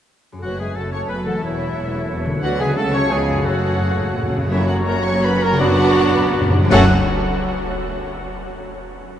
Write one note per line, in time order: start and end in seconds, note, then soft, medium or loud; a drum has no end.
0.32 1.46 F#2 soft
0.32 1.29 C#4 soft
0.32 1.33 F#4 soft
0.38 1.43 A4 soft
0.42 0.73 F#1 soft
0.42 0.73 F#2 soft
0.42 0.59 F#3 soft
0.42 2.40 F#3 soft
0.42 1.40 A3 soft
0.42 0.59 F#4 soft
0.42 0.59 F#4 medium
0.42 0.78 B4 soft
0.42 0.59 C#5 soft
0.42 0.59 F#5 medium
0.59 0.77 G#3 soft
0.59 0.77 G#4 soft
0.59 0.67 G#4 soft
0.59 0.78 G#4 soft
0.59 0.77 E5 soft
0.59 0.77 G#5 medium
0.76 1.07 F#1 soft
0.76 1.07 F#2 soft
0.76 0.93 A3 soft
0.76 0.92 A4 medium
0.76 1.46 A4 soft
0.76 0.84 A4 soft
0.76 0.84 A4 medium
0.76 0.82 F#5 medium
0.76 0.94 A5 medium
0.92 1.10 C#4 soft
0.92 1.00 C#5 medium
0.92 1.10 C#5 medium
0.92 1.10 C#5 soft
0.92 1.10 A5 soft
0.92 1.01 C#6 medium
1.09 1.40 F#1 soft
1.09 1.40 F#2 soft
1.09 1.27 B3 medium
1.09 1.17 B4 medium
1.09 1.27 B4 medium
1.09 1.28 B4 medium
1.09 1.27 G#5 medium
1.09 1.27 B5 medium
1.26 2.36 E3 soft
1.26 1.43 A3 medium
1.26 1.42 A4 medium
1.26 1.44 A4 medium
1.26 1.44 A4 soft
1.26 1.34 F#5 medium
1.26 1.44 A5 medium
1.30 2.38 C#4 soft
1.35 2.34 F#4 soft
1.39 2.25 E4 medium
1.39 2.43 A#4 soft
1.43 1.73 E1 medium
1.43 1.73 E2 medium
1.43 2.25 E3 medium
1.43 2.44 A#3 soft
1.43 2.26 E4 soft
1.43 2.28 E4 medium
1.43 2.10 C#5 medium
1.43 2.26 C#5 medium
1.43 2.27 E5 medium
1.77 2.07 E1 medium
1.77 2.07 E2 medium
2.10 2.40 E1 medium
2.10 2.39 E2 medium
2.10 2.45 C#5 medium
2.25 2.70 D3 medium
2.30 2.72 B3 soft
2.35 2.67 F#4 soft
2.39 2.59 F#3 medium
2.39 2.77 B4 soft
2.39 2.59 F#5 loud
2.43 2.75 D2 medium
2.43 2.75 D3 medium
2.43 3.10 F#3 medium
2.43 2.77 B3 medium
2.43 2.50 F#4 medium
2.43 2.51 F#4 medium
2.43 2.60 F#4 medium
2.43 2.77 B4 medium
2.43 2.60 D5 medium
2.59 2.92 C#3 medium
2.59 2.77 G#3 medium
2.59 2.67 G#4 medium
2.59 2.77 G#4 medium
2.59 2.79 G#4 medium
2.59 2.78 E5 medium
2.59 2.78 G#5 medium
2.63 2.96 C#4 medium
2.68 3.08 F#4 medium
2.72 3.10 A4 medium
2.76 3.09 C#2 medium
2.76 3.10 C#3 medium
2.76 2.94 A3 medium
2.76 3.11 C#4 medium
2.76 2.84 A4 medium
2.76 3.10 A4 medium
2.76 2.94 A4 medium
2.76 2.95 F#5 medium
2.76 2.94 A5 medium
2.93 3.38 C#3 medium
2.93 3.11 C#4 medium
2.93 3.11 C#5 medium
2.93 3.13 C#5 medium
2.93 3.11 A5 medium
2.93 3.11 C#6 loud
2.98 3.31 C#4 medium
2.98 3.43 F4 medium
3.06 3.45 B4 medium
3.11 3.45 C#2 medium
3.11 3.46 C#3 medium
3.11 3.46 F3 medium
3.11 3.46 G#3 medium
3.11 3.45 B3 medium
3.11 3.45 G#4 medium
3.11 3.46 G#4 medium
3.11 3.47 G#4 medium
3.11 3.47 C#5 medium
3.11 3.46 F5 medium
3.11 3.46 G#5 medium
3.28 4.44 F#2 medium
3.33 4.60 C#4 soft
3.37 4.69 F#4 soft
3.42 4.33 F#1 medium
3.42 4.33 F#3 medium
3.42 4.31 F#4 medium
3.42 4.33 F#4 medium
3.42 4.51 A4 soft
3.42 4.33 A4 medium
3.42 4.32 F#5 medium
3.46 3.77 F#2 medium
3.46 4.32 F#3 medium
3.46 4.32 A3 medium
3.46 4.32 C#5 medium
3.54 3.60 F#2 soft
3.61 3.68 F#2 soft
3.69 3.75 F#2 soft
3.76 3.83 F#2 soft
3.76 3.87 F#2 medium
3.84 3.91 F#2 soft
3.92 3.98 F#2 medium
3.98 4.06 F#2 medium
3.98 4.05 G#2 medium
4.08 4.14 F#2 medium
4.15 4.22 F#2 medium
4.15 4.22 A2 medium
4.23 4.29 F#2 medium
4.30 4.36 F#2 medium
4.30 4.51 C#3 medium
4.38 4.46 F#2 medium
4.50 6.49 F#1 medium
4.50 6.48 F#2 medium
4.50 5.59 F#2 medium
4.50 4.64 F#3 medium
4.50 4.85 F#3 medium
4.50 4.64 A#3 medium
4.50 4.85 A#3 medium
4.50 4.64 C#4 medium
4.50 4.86 C#4 medium
4.50 4.69 E4 medium
4.50 4.64 F#4 medium
4.50 4.86 F#4 medium
4.50 5.57 C#5 medium
4.50 4.68 E5 medium
4.50 5.57 A#5 medium
4.50 tam-tam medium
4.50 cymbal swell medium
4.61 5.41 C#4 medium
4.68 5.33 F#4 medium
4.68 4.88 F#4 medium
4.68 4.75 F#5 medium
4.79 5.24 A#4 medium
4.86 5.59 F#3 medium
4.86 5.59 A#3 medium
4.86 5.59 C#4 medium
4.86 5.59 F#4 medium
4.86 4.97 A#4 medium
4.86 5.15 C#5 medium
4.86 5.05 A#5 loud
4.98 6.04 F#5 medium
5.05 5.26 C#5 loud
5.05 5.62 A#5 medium
5.05 5.24 C#6 loud
5.16 5.62 C#5 medium
5.22 5.62 A#4 medium
5.22 5.45 B4 medium
5.22 5.42 B5 loud
5.34 5.78 F#4 medium
5.41 5.62 C#4 medium
5.41 5.60 A#4 loud
5.41 5.60 A#5 loud
5.51 5.62 C#3 medium
5.59 5.67 F#2 soft
5.59 6.64 F#2 loud
5.59 5.72 F#3 loud
5.59 6.51 F#3 loud
5.59 5.72 B3 loud
5.59 6.53 B3 medium
5.59 6.53 D4 loud
5.59 5.73 D4 medium
5.59 6.51 F#4 loud
5.59 5.73 F#4 loud
5.59 6.51 F#4 loud
5.59 6.51 D5 loud
5.59 6.52 F#5 loud
5.59 6.53 B5 loud
5.70 6.51 D4 medium
5.76 5.83 F#2 soft
5.76 6.41 F#4 medium
5.84 5.91 F#2 medium
5.84 6.32 B4 medium
5.92 5.99 F#2 medium
5.97 6.22 D5 medium
6.05 6.15 F#2 medium
6.05 6.69 F#5 medium
6.14 6.24 F#2 medium
6.14 6.72 B5 loud
6.23 6.32 F#2 medium
6.23 6.72 D5 medium
6.33 6.40 F#2 loud
6.33 6.72 B4 medium
6.41 6.49 F#2 loud
6.41 6.69 F#4 medium
6.50 6.57 F#2 loud
6.50 6.72 D4 medium
6.59 6.66 F#2 loud
6.59 6.66 F#3 medium
6.64 6.90 F#2 loud
6.64 6.90 F#3 loud
6.69 6.90 F#1 loud
6.69 6.87 F#2 loud
6.69 6.91 F#2 loud
6.69 6.85 F#3 loud
6.69 6.91 F#3 loud
6.69 6.85 A3 loud
6.69 6.91 A3 loud
6.69 6.90 C#4 medium
6.69 6.85 C#4 medium
6.69 6.91 C#4 loud
6.69 6.85 F#4 loud
6.69 6.90 F#4 loud
6.69 6.91 F#4 loud
6.69 6.86 A4 loud
6.69 6.91 F#5 loud
6.69 6.91 F#6 loud
6.69 concert bass drum medium
6.69 crash medium
6.73 6.90 A4 medium
6.73 6.90 F#5 loud